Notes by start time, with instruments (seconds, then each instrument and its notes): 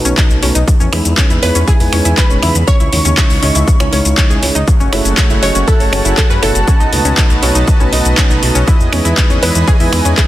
Already playing: felt piano B2 A3 B3 D#4 F#4 B4
0.05 detuned saw bass B1, synth arpeggio sound C#4, closed hi-hat, shaker
0.17 synth arpeggio sound D#4, kick, clap, closed hi-hat, shaker
0.30 detuned saw bass B1, shaker
0.43 detuned saw bass B1, felt piano A3 B3 D#4 F#4 B4, synth arpeggio sound C#4, open hi-hat
0.55 detuned saw bass B1, synth arpeggio sound D#4, closed hi-hat, shaker
0.68 kick, closed hi-hat, shaker
0.80 detuned saw bass E2, synth arpeggio sound C#4, shaker
0.93 detuned saw bass E2, felt piano G#3 B3 D#4 E4 B4, synth arpeggio sound E4, finger snap, open hi-hat
1.05 detuned saw bass E2, closed hi-hat, shaker
1.17 synth arpeggio sound C#4, kick, clap, closed hi-hat, shaker
1.30 detuned saw bass E2, synth arpeggio sound E4, closed hi-hat, shaker
1.43 detuned saw bass E2, felt piano G#3 B3 D#4 E4 C#5, synth pluck B4, digital synth lead B5, open hi-hat
1.55 detuned saw bass E2, synth arpeggio sound C#4, closed hi-hat, shaker
1.67 synth arpeggio sound E4, synth pluck G#4, digital synth lead G#5, kick, closed hi-hat, shaker
1.80 detuned saw bass E2, felt piano G#3 B3 D#4 E4 B4, open hi-hat, shaker
1.92 detuned saw bass E2, felt piano G#3 B3 D#4 E4 B4, synth arpeggio sound C#4, finger snap, open hi-hat
2.05 detuned saw bass E2, synth arpeggio sound E4, closed hi-hat, shaker
2.17 synth pluck B4, digital synth lead B5, kick, clap, closed hi-hat, shaker
2.30 detuned saw bass E1, synth arpeggio sound C#4, shaker
2.42 detuned saw bass E2, felt piano C#3 G#3 B3 D#4 E4 B4, synth arpeggio sound E4, finger snap, open hi-hat
2.55 detuned saw bass E2, closed hi-hat, shaker
2.67 synth arpeggio sound C#4, synth pluck C#5, digital synth lead C#6, kick, closed hi-hat, shaker
2.80 detuned saw bass C#2, synth arpeggio sound E4, closed hi-hat, shaker
2.93 detuned saw bass D#2, felt piano C#3 G#3 C#4 D#4 E4 C#5, open hi-hat
3.05 detuned saw bass D#2, synth arpeggio sound C#4, closed hi-hat, shaker
3.17 synth arpeggio sound E4, kick, clap, closed hi-hat, shaker
3.30 detuned saw bass C#2, open hi-hat, shaker
3.42 detuned saw bass C#2, felt piano C#3 G#3 C#4 D#4 E4 D#5, synth arpeggio sound C#4, open hi-hat
3.55 detuned saw bass C#2, synth arpeggio sound E4, closed hi-hat, shaker
3.68 kick, closed hi-hat, shaker
3.80 detuned saw bass C#2, felt piano C#3 G#3 C#4 D#4 E4 C#5, synth arpeggio sound C#4, finger snap, closed hi-hat, shaker
3.93 detuned saw bass C#2, felt piano C#3 G#3 C#4 D#4 E4 C#5, synth arpeggio sound C#4, open hi-hat
4.05 detuned saw bass C#2, closed hi-hat, shaker
4.17 synth arpeggio sound C#5, kick, clap, closed hi-hat, shaker
4.30 detuned saw bass C#2, synth arpeggio sound G#4, shaker
4.43 detuned saw bass C#2, felt piano G#3 C#4 D#4 E4 C#5, open hi-hat
4.55 detuned saw bass C#2, synth arpeggio sound D#4, closed hi-hat, shaker
4.67 supersaw synth A3 F#4 C#5 F#5, kick, closed hi-hat, shaker
4.80 detuned saw bass F#1, synth arpeggio sound C#4, shaker
4.93 detuned saw bass F#1, felt piano A3 C#4 F#4 G#4 C#5, synth arpeggio sound E4, finger snap, open hi-hat
5.05 detuned saw bass F#1, closed hi-hat, shaker
5.17 synth arpeggio sound C#4, kick, clap, closed hi-hat, shaker
5.30 detuned saw bass F#1, synth arpeggio sound E4, closed hi-hat, shaker
5.43 detuned saw bass F#1, felt piano A3 C#4 F#4 G#4 D#5, synth pluck C#5, digital synth lead C#6, open hi-hat
5.55 detuned saw bass F#1, synth arpeggio sound C#4, closed hi-hat, shaker
5.68 synth arpeggio sound E4, synth pluck A4, digital synth lead A5, kick, closed hi-hat, shaker
5.80 detuned saw bass F#1, felt piano A3 C#4 F#4 G#4 C#5, open hi-hat, shaker
5.93 detuned saw bass F#1, felt piano A3 C#4 F#4 G#4 C#5, synth arpeggio sound C#4, finger snap, open hi-hat
6.05 detuned saw bass F#1, synth arpeggio sound E4, closed hi-hat, shaker
6.17 synth pluck A4, digital synth lead A5, kick, clap, closed hi-hat, shaker
6.30 detuned saw bass F#2, synth arpeggio sound C#4, synth pluck B4, digital synth lead B5, shaker
6.43 detuned saw bass F#1, felt piano B2 A3 C#4 F#4 G#4 C#5, synth arpeggio sound E4, synth pluck A4, digital synth lead A5, finger snap, open hi-hat
6.55 detuned saw bass F#1, closed hi-hat, shaker
6.67 synth arpeggio sound C#4, supersaw synth B4 D#5 A5, kick, closed hi-hat, shaker
6.80 detuned saw bass B1, synth arpeggio sound D#4, shaker
6.93 detuned saw bass C#2, felt piano B2 A3 B3 D#4 F#4 B4, open hi-hat
7.05 detuned saw bass C#2, synth arpeggio sound C#4, closed hi-hat, shaker
7.17 synth arpeggio sound D#4, kick, clap, closed hi-hat, shaker
7.30 detuned saw bass B1, closed hi-hat, shaker
7.43 detuned saw bass B1, felt piano B2 A3 B3 D#4 F#4 C#5, synth arpeggio sound C#4, open hi-hat
7.55 detuned saw bass B1, synth arpeggio sound D#4, closed hi-hat, shaker
7.68 kick, closed hi-hat, shaker
7.80 detuned saw bass B1, felt piano B2 A3 B3 D#4 F#4 B4, synth arpeggio sound C#4, shaker
7.93 detuned saw bass B1, felt piano B2 A3 B3 D#4 F#4 B4, synth arpeggio sound D#4, open hi-hat
8.05 detuned saw bass B1, closed hi-hat, shaker
8.17 synth arpeggio sound C#4, kick, clap, closed hi-hat, shaker
8.30 detuned saw bass B1, synth arpeggio sound D#4, shaker
8.43 detuned saw bass B1, felt piano A3 B3 D#4 F#4 B4, open hi-hat
8.55 detuned saw bass B1, synth arpeggio sound C#4, closed hi-hat, shaker
8.67 supersaw synth E3 B4 G#5, synth arpeggio sound E4, kick, closed hi-hat, shaker
8.80 detuned saw bass E2, shaker
8.93 detuned saw bass E2, felt piano G#3 B3 D#4 E4 B4, synth arpeggio sound C#4, finger snap, open hi-hat
9.05 detuned saw bass E2, synth arpeggio sound E4, closed hi-hat, shaker
9.17 kick, clap, closed hi-hat, shaker
9.30 detuned saw bass E2, synth arpeggio sound C#4, closed hi-hat, shaker
9.43 detuned saw bass E2, felt piano G#3 B3 D#4 E4 C#5, synth arpeggio sound E4, synth pluck B4, digital synth lead B5, open hi-hat
9.55 detuned saw bass E2, closed hi-hat, shaker
9.68 synth arpeggio sound C#4, synth pluck G#4, digital synth lead G#5, kick, closed hi-hat, shaker
9.80 detuned saw bass E2, felt piano G#3 B3 D#4 E4 B4, synth arpeggio sound E4, open hi-hat, shaker
9.93 detuned saw bass E2, felt piano G#3 B3 D#4 E4 B4, finger snap, open hi-hat
10.05 detuned saw bass E2, synth arpeggio sound C#4, closed hi-hat, shaker
10.17 synth arpeggio sound E4, synth pluck G#4, digital synth lead G#5, kick, clap, closed hi-hat, shaker